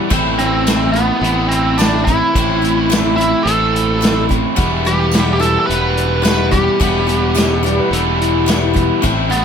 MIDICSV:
0, 0, Header, 1, 7, 480
1, 0, Start_track
1, 0, Key_signature, 1, "minor"
1, 0, Tempo, 558140
1, 87, Time_signature, 4, 2, 24, 8
1, 8126, End_track
2, 0, Start_track
2, 0, Title_t, "Electric slide guitar"
2, 0, Program_c, 0, 29
2, 6339, Note_on_c, 0, 76, 88
2, 6568, Note_off_c, 0, 76, 0
2, 6587, Note_on_c, 0, 74, 77
2, 6696, Note_off_c, 0, 74, 0
2, 6702, Note_on_c, 0, 71, 82
2, 6813, Note_off_c, 0, 71, 0
2, 6823, Note_on_c, 0, 69, 71
2, 6933, Note_off_c, 0, 69, 0
2, 6945, Note_on_c, 0, 67, 73
2, 7054, Note_off_c, 0, 67, 0
2, 7061, Note_on_c, 0, 64, 91
2, 7289, Note_off_c, 0, 64, 0
2, 7323, Note_on_c, 0, 64, 84
2, 7772, Note_off_c, 0, 64, 0
2, 8126, End_track
3, 0, Start_track
3, 0, Title_t, "Lead electric guitar"
3, 0, Program_c, 1, 29
3, 331, Note_on_c, 1, 60, 82
3, 789, Note_off_c, 1, 60, 0
3, 793, Note_on_c, 1, 59, 83
3, 1274, Note_off_c, 1, 59, 0
3, 1277, Note_on_c, 1, 60, 69
3, 1527, Note_on_c, 1, 62, 81
3, 1531, Note_off_c, 1, 60, 0
3, 1758, Note_off_c, 1, 62, 0
3, 1762, Note_on_c, 1, 64, 83
3, 2708, Note_off_c, 1, 64, 0
3, 2719, Note_on_c, 1, 64, 94
3, 2949, Note_on_c, 1, 69, 89
3, 2972, Note_off_c, 1, 64, 0
3, 3646, Note_off_c, 1, 69, 0
3, 4187, Note_on_c, 1, 67, 83
3, 4574, Note_off_c, 1, 67, 0
3, 4585, Note_on_c, 1, 67, 66
3, 4647, Note_on_c, 1, 69, 91
3, 4648, Note_off_c, 1, 67, 0
3, 4803, Note_off_c, 1, 69, 0
3, 4813, Note_on_c, 1, 69, 75
3, 4870, Note_off_c, 1, 69, 0
3, 4873, Note_on_c, 1, 71, 98
3, 5352, Note_off_c, 1, 71, 0
3, 5362, Note_on_c, 1, 71, 90
3, 5602, Note_on_c, 1, 67, 78
3, 5614, Note_off_c, 1, 71, 0
3, 6772, Note_off_c, 1, 67, 0
3, 8006, Note_on_c, 1, 59, 93
3, 8126, Note_off_c, 1, 59, 0
3, 8126, End_track
4, 0, Start_track
4, 0, Title_t, "Steel-string acoustic guitar"
4, 0, Program_c, 2, 25
4, 0, Note_on_c, 2, 55, 49
4, 0, Note_on_c, 2, 59, 44
4, 89, Note_on_c, 2, 45, 82
4, 90, Note_on_c, 2, 52, 78
4, 91, Note_off_c, 2, 59, 0
4, 92, Note_off_c, 2, 55, 0
4, 95, Note_on_c, 2, 64, 80
4, 97, Note_on_c, 2, 60, 88
4, 99, Note_on_c, 2, 57, 76
4, 322, Note_off_c, 2, 64, 0
4, 328, Note_off_c, 2, 45, 0
4, 329, Note_off_c, 2, 52, 0
4, 332, Note_off_c, 2, 60, 0
4, 332, Note_on_c, 2, 64, 43
4, 333, Note_off_c, 2, 57, 0
4, 345, Note_on_c, 2, 60, 39
4, 353, Note_on_c, 2, 57, 39
4, 570, Note_off_c, 2, 64, 0
4, 573, Note_on_c, 2, 52, 57
4, 576, Note_off_c, 2, 57, 0
4, 577, Note_off_c, 2, 60, 0
4, 586, Note_on_c, 2, 57, 65
4, 591, Note_on_c, 2, 60, 63
4, 601, Note_on_c, 2, 64, 65
4, 795, Note_off_c, 2, 64, 0
4, 805, Note_on_c, 2, 64, 45
4, 811, Note_off_c, 2, 52, 0
4, 817, Note_off_c, 2, 57, 0
4, 820, Note_off_c, 2, 60, 0
4, 828, Note_on_c, 2, 57, 39
4, 1526, Note_off_c, 2, 57, 0
4, 1529, Note_on_c, 2, 52, 56
4, 1536, Note_on_c, 2, 57, 62
4, 1543, Note_on_c, 2, 60, 57
4, 1546, Note_off_c, 2, 64, 0
4, 1549, Note_on_c, 2, 64, 69
4, 1769, Note_off_c, 2, 64, 0
4, 1770, Note_off_c, 2, 52, 0
4, 1773, Note_off_c, 2, 57, 0
4, 1777, Note_off_c, 2, 60, 0
4, 1780, Note_on_c, 2, 64, 52
4, 1796, Note_on_c, 2, 60, 49
4, 1803, Note_on_c, 2, 57, 41
4, 2015, Note_off_c, 2, 64, 0
4, 2023, Note_off_c, 2, 57, 0
4, 2023, Note_off_c, 2, 60, 0
4, 2028, Note_on_c, 2, 45, 73
4, 2031, Note_on_c, 2, 52, 66
4, 2033, Note_on_c, 2, 57, 68
4, 2042, Note_on_c, 2, 64, 69
4, 2044, Note_on_c, 2, 60, 76
4, 2242, Note_off_c, 2, 64, 0
4, 2251, Note_off_c, 2, 60, 0
4, 2252, Note_on_c, 2, 64, 43
4, 2258, Note_off_c, 2, 57, 0
4, 2260, Note_off_c, 2, 45, 0
4, 2261, Note_off_c, 2, 52, 0
4, 2261, Note_on_c, 2, 60, 42
4, 2268, Note_on_c, 2, 57, 37
4, 2482, Note_off_c, 2, 57, 0
4, 2490, Note_on_c, 2, 52, 62
4, 2492, Note_off_c, 2, 64, 0
4, 2492, Note_on_c, 2, 57, 65
4, 2496, Note_off_c, 2, 60, 0
4, 2508, Note_on_c, 2, 60, 67
4, 2509, Note_on_c, 2, 64, 73
4, 2722, Note_off_c, 2, 64, 0
4, 2729, Note_off_c, 2, 60, 0
4, 2730, Note_off_c, 2, 52, 0
4, 2732, Note_off_c, 2, 57, 0
4, 2733, Note_on_c, 2, 64, 46
4, 2739, Note_on_c, 2, 60, 44
4, 2750, Note_on_c, 2, 57, 43
4, 3445, Note_off_c, 2, 57, 0
4, 3446, Note_on_c, 2, 52, 54
4, 3453, Note_off_c, 2, 60, 0
4, 3456, Note_on_c, 2, 57, 61
4, 3463, Note_off_c, 2, 64, 0
4, 3463, Note_on_c, 2, 60, 64
4, 3467, Note_on_c, 2, 64, 58
4, 3678, Note_off_c, 2, 64, 0
4, 3689, Note_off_c, 2, 52, 0
4, 3689, Note_on_c, 2, 64, 48
4, 3690, Note_off_c, 2, 60, 0
4, 3694, Note_off_c, 2, 57, 0
4, 3700, Note_on_c, 2, 60, 48
4, 3715, Note_on_c, 2, 57, 46
4, 3923, Note_on_c, 2, 40, 75
4, 3925, Note_off_c, 2, 57, 0
4, 3925, Note_off_c, 2, 60, 0
4, 3925, Note_on_c, 2, 47, 76
4, 3927, Note_on_c, 2, 52, 75
4, 3928, Note_on_c, 2, 55, 69
4, 3929, Note_on_c, 2, 59, 75
4, 3930, Note_off_c, 2, 64, 0
4, 3942, Note_on_c, 2, 64, 85
4, 4160, Note_off_c, 2, 64, 0
4, 4168, Note_off_c, 2, 40, 0
4, 4168, Note_off_c, 2, 47, 0
4, 4170, Note_off_c, 2, 52, 0
4, 4170, Note_off_c, 2, 55, 0
4, 4170, Note_off_c, 2, 59, 0
4, 4171, Note_on_c, 2, 64, 52
4, 4184, Note_on_c, 2, 59, 44
4, 4191, Note_on_c, 2, 55, 45
4, 4192, Note_on_c, 2, 52, 41
4, 4410, Note_off_c, 2, 52, 0
4, 4411, Note_off_c, 2, 64, 0
4, 4418, Note_off_c, 2, 59, 0
4, 4419, Note_off_c, 2, 55, 0
4, 4420, Note_on_c, 2, 52, 56
4, 4430, Note_on_c, 2, 55, 60
4, 4437, Note_on_c, 2, 59, 57
4, 4443, Note_on_c, 2, 64, 57
4, 4629, Note_off_c, 2, 64, 0
4, 4640, Note_on_c, 2, 64, 52
4, 4643, Note_off_c, 2, 59, 0
4, 4653, Note_on_c, 2, 59, 49
4, 4654, Note_off_c, 2, 52, 0
4, 4654, Note_off_c, 2, 55, 0
4, 4664, Note_on_c, 2, 52, 40
4, 4664, Note_on_c, 2, 55, 44
4, 5345, Note_off_c, 2, 52, 0
4, 5349, Note_on_c, 2, 52, 55
4, 5350, Note_off_c, 2, 55, 0
4, 5359, Note_off_c, 2, 59, 0
4, 5360, Note_on_c, 2, 55, 61
4, 5369, Note_on_c, 2, 59, 62
4, 5371, Note_off_c, 2, 64, 0
4, 5374, Note_on_c, 2, 64, 64
4, 5592, Note_off_c, 2, 64, 0
4, 5594, Note_off_c, 2, 59, 0
4, 5600, Note_off_c, 2, 52, 0
4, 5602, Note_on_c, 2, 64, 49
4, 5604, Note_on_c, 2, 59, 39
4, 5606, Note_off_c, 2, 55, 0
4, 5619, Note_on_c, 2, 55, 44
4, 5621, Note_on_c, 2, 52, 40
4, 5844, Note_off_c, 2, 52, 0
4, 5845, Note_on_c, 2, 40, 70
4, 5846, Note_off_c, 2, 55, 0
4, 5847, Note_off_c, 2, 64, 0
4, 5848, Note_off_c, 2, 59, 0
4, 5853, Note_on_c, 2, 47, 67
4, 5854, Note_on_c, 2, 52, 77
4, 5857, Note_on_c, 2, 55, 75
4, 5858, Note_on_c, 2, 59, 74
4, 5860, Note_on_c, 2, 64, 88
4, 6067, Note_off_c, 2, 64, 0
4, 6074, Note_off_c, 2, 59, 0
4, 6077, Note_off_c, 2, 55, 0
4, 6077, Note_on_c, 2, 64, 43
4, 6085, Note_on_c, 2, 59, 45
4, 6087, Note_off_c, 2, 52, 0
4, 6088, Note_off_c, 2, 40, 0
4, 6088, Note_on_c, 2, 55, 39
4, 6092, Note_off_c, 2, 47, 0
4, 6097, Note_on_c, 2, 52, 39
4, 6307, Note_off_c, 2, 52, 0
4, 6313, Note_off_c, 2, 55, 0
4, 6317, Note_on_c, 2, 52, 67
4, 6318, Note_off_c, 2, 59, 0
4, 6321, Note_off_c, 2, 64, 0
4, 6323, Note_on_c, 2, 55, 60
4, 6329, Note_on_c, 2, 59, 66
4, 6331, Note_on_c, 2, 64, 68
4, 6550, Note_off_c, 2, 64, 0
4, 6557, Note_off_c, 2, 59, 0
4, 6560, Note_on_c, 2, 64, 60
4, 6563, Note_off_c, 2, 55, 0
4, 6564, Note_off_c, 2, 52, 0
4, 6567, Note_on_c, 2, 59, 58
4, 6573, Note_on_c, 2, 55, 53
4, 6578, Note_on_c, 2, 52, 44
4, 7275, Note_off_c, 2, 52, 0
4, 7278, Note_on_c, 2, 52, 66
4, 7280, Note_off_c, 2, 55, 0
4, 7281, Note_off_c, 2, 59, 0
4, 7290, Note_on_c, 2, 55, 76
4, 7292, Note_on_c, 2, 59, 70
4, 7298, Note_off_c, 2, 64, 0
4, 7301, Note_on_c, 2, 64, 72
4, 7501, Note_off_c, 2, 64, 0
4, 7509, Note_off_c, 2, 59, 0
4, 7512, Note_on_c, 2, 64, 53
4, 7519, Note_on_c, 2, 59, 57
4, 7522, Note_off_c, 2, 55, 0
4, 7524, Note_off_c, 2, 52, 0
4, 7532, Note_on_c, 2, 55, 47
4, 7542, Note_on_c, 2, 52, 44
4, 7757, Note_off_c, 2, 52, 0
4, 7758, Note_on_c, 2, 45, 83
4, 7759, Note_off_c, 2, 64, 0
4, 7765, Note_off_c, 2, 59, 0
4, 7768, Note_off_c, 2, 55, 0
4, 7768, Note_on_c, 2, 52, 84
4, 7769, Note_on_c, 2, 64, 80
4, 7771, Note_on_c, 2, 57, 80
4, 7773, Note_on_c, 2, 60, 84
4, 7986, Note_off_c, 2, 64, 0
4, 7996, Note_on_c, 2, 64, 48
4, 7997, Note_off_c, 2, 60, 0
4, 8004, Note_off_c, 2, 45, 0
4, 8007, Note_off_c, 2, 57, 0
4, 8008, Note_on_c, 2, 60, 44
4, 8009, Note_off_c, 2, 52, 0
4, 8017, Note_on_c, 2, 57, 38
4, 8126, Note_off_c, 2, 57, 0
4, 8126, Note_off_c, 2, 60, 0
4, 8126, Note_off_c, 2, 64, 0
4, 8126, End_track
5, 0, Start_track
5, 0, Title_t, "Overdriven electric guitar"
5, 0, Program_c, 3, 29
5, 0, Note_on_c, 3, 64, 68
5, 96, Note_off_c, 3, 64, 0
5, 1042, Note_on_c, 3, 45, 63
5, 1055, Note_on_c, 3, 52, 67
5, 1055, Note_on_c, 3, 57, 63
5, 1062, Note_on_c, 3, 60, 73
5, 1066, Note_on_c, 3, 64, 70
5, 1992, Note_off_c, 3, 45, 0
5, 1999, Note_off_c, 3, 57, 0
5, 2002, Note_off_c, 3, 60, 0
5, 2011, Note_off_c, 3, 52, 0
5, 2027, Note_off_c, 3, 64, 0
5, 2963, Note_on_c, 3, 45, 62
5, 2972, Note_on_c, 3, 52, 77
5, 2980, Note_on_c, 3, 57, 59
5, 2984, Note_on_c, 3, 60, 74
5, 2987, Note_on_c, 3, 64, 74
5, 3913, Note_off_c, 3, 45, 0
5, 3922, Note_off_c, 3, 57, 0
5, 3924, Note_off_c, 3, 60, 0
5, 3932, Note_off_c, 3, 52, 0
5, 3943, Note_off_c, 3, 64, 0
5, 4893, Note_on_c, 3, 40, 56
5, 4900, Note_on_c, 3, 47, 68
5, 4901, Note_on_c, 3, 52, 67
5, 4906, Note_on_c, 3, 55, 70
5, 4915, Note_on_c, 3, 59, 70
5, 4919, Note_on_c, 3, 64, 72
5, 5836, Note_off_c, 3, 40, 0
5, 5837, Note_off_c, 3, 47, 0
5, 5845, Note_off_c, 3, 55, 0
5, 5849, Note_off_c, 3, 59, 0
5, 5850, Note_off_c, 3, 52, 0
5, 5863, Note_off_c, 3, 64, 0
5, 6801, Note_on_c, 3, 40, 70
5, 6812, Note_on_c, 3, 47, 69
5, 6814, Note_on_c, 3, 52, 73
5, 6817, Note_on_c, 3, 55, 71
5, 6819, Note_on_c, 3, 59, 67
5, 6824, Note_on_c, 3, 64, 71
5, 7745, Note_off_c, 3, 47, 0
5, 7751, Note_off_c, 3, 40, 0
5, 7754, Note_off_c, 3, 52, 0
5, 7759, Note_off_c, 3, 55, 0
5, 7760, Note_off_c, 3, 59, 0
5, 7773, Note_off_c, 3, 64, 0
5, 8126, End_track
6, 0, Start_track
6, 0, Title_t, "Fingered electric bass"
6, 0, Program_c, 4, 33
6, 99, Note_on_c, 4, 33, 89
6, 945, Note_off_c, 4, 33, 0
6, 1044, Note_on_c, 4, 33, 90
6, 1898, Note_off_c, 4, 33, 0
6, 2022, Note_on_c, 4, 33, 76
6, 2868, Note_off_c, 4, 33, 0
6, 2972, Note_on_c, 4, 33, 81
6, 3822, Note_off_c, 4, 33, 0
6, 3942, Note_on_c, 4, 28, 87
6, 4788, Note_off_c, 4, 28, 0
6, 4898, Note_on_c, 4, 28, 78
6, 5745, Note_off_c, 4, 28, 0
6, 5854, Note_on_c, 4, 28, 85
6, 6702, Note_off_c, 4, 28, 0
6, 6803, Note_on_c, 4, 28, 81
6, 7656, Note_off_c, 4, 28, 0
6, 7779, Note_on_c, 4, 33, 85
6, 8126, Note_off_c, 4, 33, 0
6, 8126, End_track
7, 0, Start_track
7, 0, Title_t, "Drums"
7, 97, Note_on_c, 9, 36, 115
7, 100, Note_on_c, 9, 42, 80
7, 183, Note_off_c, 9, 36, 0
7, 186, Note_off_c, 9, 42, 0
7, 337, Note_on_c, 9, 42, 59
7, 423, Note_off_c, 9, 42, 0
7, 574, Note_on_c, 9, 54, 81
7, 577, Note_on_c, 9, 42, 79
7, 586, Note_on_c, 9, 38, 115
7, 660, Note_off_c, 9, 54, 0
7, 663, Note_off_c, 9, 42, 0
7, 672, Note_off_c, 9, 38, 0
7, 823, Note_on_c, 9, 42, 54
7, 909, Note_off_c, 9, 42, 0
7, 1068, Note_on_c, 9, 42, 66
7, 1154, Note_off_c, 9, 42, 0
7, 1303, Note_on_c, 9, 42, 62
7, 1389, Note_off_c, 9, 42, 0
7, 1537, Note_on_c, 9, 54, 76
7, 1551, Note_on_c, 9, 42, 81
7, 1561, Note_on_c, 9, 38, 111
7, 1623, Note_off_c, 9, 54, 0
7, 1637, Note_off_c, 9, 42, 0
7, 1647, Note_off_c, 9, 38, 0
7, 1784, Note_on_c, 9, 36, 78
7, 1787, Note_on_c, 9, 42, 56
7, 1870, Note_off_c, 9, 36, 0
7, 1873, Note_off_c, 9, 42, 0
7, 2025, Note_on_c, 9, 36, 99
7, 2028, Note_on_c, 9, 42, 79
7, 2111, Note_off_c, 9, 36, 0
7, 2114, Note_off_c, 9, 42, 0
7, 2276, Note_on_c, 9, 42, 60
7, 2362, Note_off_c, 9, 42, 0
7, 2507, Note_on_c, 9, 54, 87
7, 2513, Note_on_c, 9, 42, 86
7, 2523, Note_on_c, 9, 38, 116
7, 2593, Note_off_c, 9, 54, 0
7, 2599, Note_off_c, 9, 42, 0
7, 2609, Note_off_c, 9, 38, 0
7, 2758, Note_on_c, 9, 42, 62
7, 2844, Note_off_c, 9, 42, 0
7, 2986, Note_on_c, 9, 42, 78
7, 3072, Note_off_c, 9, 42, 0
7, 3235, Note_on_c, 9, 42, 66
7, 3321, Note_off_c, 9, 42, 0
7, 3459, Note_on_c, 9, 54, 82
7, 3473, Note_on_c, 9, 42, 86
7, 3482, Note_on_c, 9, 38, 120
7, 3545, Note_off_c, 9, 54, 0
7, 3559, Note_off_c, 9, 42, 0
7, 3568, Note_off_c, 9, 38, 0
7, 3705, Note_on_c, 9, 36, 80
7, 3708, Note_on_c, 9, 42, 59
7, 3791, Note_off_c, 9, 36, 0
7, 3794, Note_off_c, 9, 42, 0
7, 3943, Note_on_c, 9, 36, 107
7, 3945, Note_on_c, 9, 42, 80
7, 4029, Note_off_c, 9, 36, 0
7, 4031, Note_off_c, 9, 42, 0
7, 4183, Note_on_c, 9, 42, 58
7, 4269, Note_off_c, 9, 42, 0
7, 4399, Note_on_c, 9, 54, 75
7, 4419, Note_on_c, 9, 42, 77
7, 4429, Note_on_c, 9, 38, 107
7, 4485, Note_off_c, 9, 54, 0
7, 4505, Note_off_c, 9, 42, 0
7, 4515, Note_off_c, 9, 38, 0
7, 4665, Note_on_c, 9, 42, 56
7, 4751, Note_off_c, 9, 42, 0
7, 4906, Note_on_c, 9, 42, 63
7, 4992, Note_off_c, 9, 42, 0
7, 5138, Note_on_c, 9, 42, 61
7, 5224, Note_off_c, 9, 42, 0
7, 5372, Note_on_c, 9, 42, 78
7, 5373, Note_on_c, 9, 54, 78
7, 5381, Note_on_c, 9, 38, 109
7, 5458, Note_off_c, 9, 42, 0
7, 5459, Note_off_c, 9, 54, 0
7, 5467, Note_off_c, 9, 38, 0
7, 5611, Note_on_c, 9, 42, 58
7, 5614, Note_on_c, 9, 36, 80
7, 5697, Note_off_c, 9, 42, 0
7, 5700, Note_off_c, 9, 36, 0
7, 5855, Note_on_c, 9, 36, 105
7, 5857, Note_on_c, 9, 42, 78
7, 5941, Note_off_c, 9, 36, 0
7, 5943, Note_off_c, 9, 42, 0
7, 6096, Note_on_c, 9, 42, 56
7, 6182, Note_off_c, 9, 42, 0
7, 6322, Note_on_c, 9, 54, 82
7, 6342, Note_on_c, 9, 42, 86
7, 6351, Note_on_c, 9, 38, 117
7, 6408, Note_off_c, 9, 54, 0
7, 6428, Note_off_c, 9, 42, 0
7, 6437, Note_off_c, 9, 38, 0
7, 6588, Note_on_c, 9, 42, 59
7, 6674, Note_off_c, 9, 42, 0
7, 6821, Note_on_c, 9, 42, 78
7, 6907, Note_off_c, 9, 42, 0
7, 7066, Note_on_c, 9, 42, 67
7, 7152, Note_off_c, 9, 42, 0
7, 7289, Note_on_c, 9, 54, 76
7, 7299, Note_on_c, 9, 42, 90
7, 7308, Note_on_c, 9, 38, 116
7, 7375, Note_off_c, 9, 54, 0
7, 7385, Note_off_c, 9, 42, 0
7, 7394, Note_off_c, 9, 38, 0
7, 7536, Note_on_c, 9, 36, 79
7, 7537, Note_on_c, 9, 42, 63
7, 7622, Note_off_c, 9, 36, 0
7, 7623, Note_off_c, 9, 42, 0
7, 7772, Note_on_c, 9, 42, 84
7, 7774, Note_on_c, 9, 36, 106
7, 7858, Note_off_c, 9, 42, 0
7, 7860, Note_off_c, 9, 36, 0
7, 8015, Note_on_c, 9, 42, 62
7, 8101, Note_off_c, 9, 42, 0
7, 8126, End_track
0, 0, End_of_file